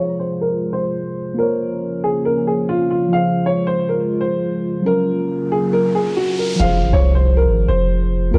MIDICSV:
0, 0, Header, 1, 7, 480
1, 0, Start_track
1, 0, Tempo, 434783
1, 1527, Time_signature, 4, 2, 24, 8
1, 9258, End_track
2, 0, Start_track
2, 0, Title_t, "Grand piano"
2, 0, Program_c, 0, 0
2, 0, Note_on_c, 0, 73, 78
2, 195, Note_off_c, 0, 73, 0
2, 214, Note_on_c, 0, 72, 76
2, 436, Note_off_c, 0, 72, 0
2, 457, Note_on_c, 0, 70, 83
2, 787, Note_off_c, 0, 70, 0
2, 804, Note_on_c, 0, 72, 89
2, 1482, Note_off_c, 0, 72, 0
2, 1530, Note_on_c, 0, 70, 85
2, 2205, Note_off_c, 0, 70, 0
2, 2250, Note_on_c, 0, 68, 83
2, 2471, Note_off_c, 0, 68, 0
2, 2488, Note_on_c, 0, 70, 89
2, 2709, Note_off_c, 0, 70, 0
2, 2730, Note_on_c, 0, 68, 71
2, 2951, Note_off_c, 0, 68, 0
2, 2969, Note_on_c, 0, 65, 90
2, 3190, Note_off_c, 0, 65, 0
2, 3209, Note_on_c, 0, 65, 81
2, 3430, Note_off_c, 0, 65, 0
2, 3454, Note_on_c, 0, 77, 92
2, 3796, Note_off_c, 0, 77, 0
2, 3821, Note_on_c, 0, 73, 79
2, 4040, Note_off_c, 0, 73, 0
2, 4050, Note_on_c, 0, 72, 89
2, 4274, Note_off_c, 0, 72, 0
2, 4293, Note_on_c, 0, 70, 67
2, 4625, Note_off_c, 0, 70, 0
2, 4644, Note_on_c, 0, 72, 76
2, 5322, Note_off_c, 0, 72, 0
2, 5369, Note_on_c, 0, 70, 90
2, 6045, Note_off_c, 0, 70, 0
2, 6092, Note_on_c, 0, 68, 83
2, 6312, Note_off_c, 0, 68, 0
2, 6327, Note_on_c, 0, 70, 87
2, 6549, Note_off_c, 0, 70, 0
2, 6569, Note_on_c, 0, 68, 81
2, 6790, Note_off_c, 0, 68, 0
2, 6810, Note_on_c, 0, 66, 87
2, 7030, Note_off_c, 0, 66, 0
2, 7052, Note_on_c, 0, 70, 76
2, 7272, Note_off_c, 0, 70, 0
2, 7282, Note_on_c, 0, 77, 88
2, 7630, Note_off_c, 0, 77, 0
2, 7653, Note_on_c, 0, 73, 80
2, 7875, Note_off_c, 0, 73, 0
2, 7895, Note_on_c, 0, 72, 78
2, 8116, Note_off_c, 0, 72, 0
2, 8137, Note_on_c, 0, 70, 82
2, 8467, Note_off_c, 0, 70, 0
2, 8483, Note_on_c, 0, 72, 88
2, 9162, Note_off_c, 0, 72, 0
2, 9207, Note_on_c, 0, 70, 90
2, 9258, Note_off_c, 0, 70, 0
2, 9258, End_track
3, 0, Start_track
3, 0, Title_t, "Synth keys"
3, 0, Program_c, 1, 88
3, 0, Control_c, 1, 64, 127
3, 0, Note_on_c, 1, 53, 68
3, 0, Note_on_c, 1, 65, 58
3, 0, Note_on_c, 1, 68, 59
3, 0, Note_on_c, 1, 72, 72
3, 1465, Note_off_c, 1, 53, 0
3, 1480, Note_off_c, 1, 65, 0
3, 1482, Note_on_c, 1, 58, 70
3, 1495, Note_off_c, 1, 68, 0
3, 1511, Note_off_c, 1, 72, 0
3, 1512, Note_on_c, 1, 65, 63
3, 1539, Control_c, 1, 64, 0
3, 1542, Note_on_c, 1, 72, 64
3, 1572, Note_on_c, 1, 73, 76
3, 1713, Control_c, 1, 64, 127
3, 3386, Note_off_c, 1, 58, 0
3, 3401, Note_off_c, 1, 65, 0
3, 3404, Note_on_c, 1, 53, 69
3, 3416, Note_off_c, 1, 72, 0
3, 3432, Note_off_c, 1, 73, 0
3, 3434, Note_on_c, 1, 65, 65
3, 3460, Control_c, 1, 64, 0
3, 3464, Note_on_c, 1, 68, 62
3, 3494, Note_on_c, 1, 72, 74
3, 3662, Control_c, 1, 64, 127
3, 5307, Note_off_c, 1, 53, 0
3, 5322, Note_off_c, 1, 65, 0
3, 5322, Note_on_c, 1, 54, 70
3, 5337, Note_off_c, 1, 68, 0
3, 5351, Note_on_c, 1, 61, 65
3, 5352, Note_off_c, 1, 72, 0
3, 5379, Control_c, 1, 64, 0
3, 5381, Note_on_c, 1, 65, 64
3, 5411, Note_on_c, 1, 70, 76
3, 5551, Control_c, 1, 64, 127
3, 7225, Note_off_c, 1, 54, 0
3, 7238, Note_on_c, 1, 53, 70
3, 7241, Note_off_c, 1, 61, 0
3, 7256, Note_off_c, 1, 65, 0
3, 7268, Note_on_c, 1, 65, 59
3, 7271, Note_off_c, 1, 70, 0
3, 7298, Note_on_c, 1, 68, 57
3, 7304, Control_c, 1, 64, 0
3, 7328, Note_on_c, 1, 72, 81
3, 7500, Control_c, 1, 64, 127
3, 9144, Note_off_c, 1, 53, 0
3, 9159, Note_off_c, 1, 65, 0
3, 9174, Note_off_c, 1, 68, 0
3, 9174, Note_on_c, 1, 58, 70
3, 9189, Note_off_c, 1, 72, 0
3, 9204, Note_on_c, 1, 65, 67
3, 9219, Control_c, 1, 64, 0
3, 9258, Note_off_c, 1, 58, 0
3, 9258, Note_off_c, 1, 65, 0
3, 9258, End_track
4, 0, Start_track
4, 0, Title_t, "Analog synth pad"
4, 0, Program_c, 2, 89
4, 0, Note_on_c, 2, 48, 76
4, 0, Note_on_c, 2, 53, 70
4, 0, Note_on_c, 2, 56, 71
4, 0, Note_on_c, 2, 65, 83
4, 1508, Note_off_c, 2, 48, 0
4, 1508, Note_off_c, 2, 56, 0
4, 1508, Note_off_c, 2, 65, 0
4, 1528, Note_on_c, 2, 49, 77
4, 1528, Note_on_c, 2, 58, 70
4, 1528, Note_on_c, 2, 61, 83
4, 3428, Note_off_c, 2, 58, 0
4, 3428, Note_off_c, 2, 61, 0
4, 3448, Note_on_c, 2, 56, 71
4, 3449, Note_on_c, 2, 65, 88
4, 5323, Note_off_c, 2, 53, 0
4, 5329, Note_off_c, 2, 49, 0
4, 5348, Note_off_c, 2, 56, 0
4, 5367, Note_on_c, 2, 54, 73
4, 5367, Note_on_c, 2, 58, 72
4, 5368, Note_on_c, 2, 49, 81
4, 7249, Note_off_c, 2, 65, 0
4, 7268, Note_off_c, 2, 49, 0
4, 7268, Note_off_c, 2, 54, 0
4, 7268, Note_off_c, 2, 58, 0
4, 9258, End_track
5, 0, Start_track
5, 0, Title_t, "808-style bass"
5, 0, Program_c, 3, 38
5, 7287, Note_on_c, 3, 29, 108
5, 7527, Note_on_c, 3, 32, 97
5, 7544, Note_off_c, 3, 29, 0
5, 7648, Note_off_c, 3, 32, 0
5, 7654, Note_on_c, 3, 36, 112
5, 8247, Note_on_c, 3, 32, 102
5, 8264, Note_off_c, 3, 36, 0
5, 8475, Note_off_c, 3, 32, 0
5, 8487, Note_on_c, 3, 29, 98
5, 9178, Note_off_c, 3, 29, 0
5, 9207, Note_on_c, 3, 34, 113
5, 9258, Note_off_c, 3, 34, 0
5, 9258, End_track
6, 0, Start_track
6, 0, Title_t, "Impact"
6, 0, Program_c, 4, 103
6, 7287, Note_on_c, 4, 60, 81
6, 9207, Note_off_c, 4, 60, 0
6, 9258, End_track
7, 0, Start_track
7, 0, Title_t, "Riser"
7, 0, Program_c, 5, 103
7, 5368, Note_on_c, 5, 60, 81
7, 7287, Note_off_c, 5, 60, 0
7, 9258, End_track
0, 0, End_of_file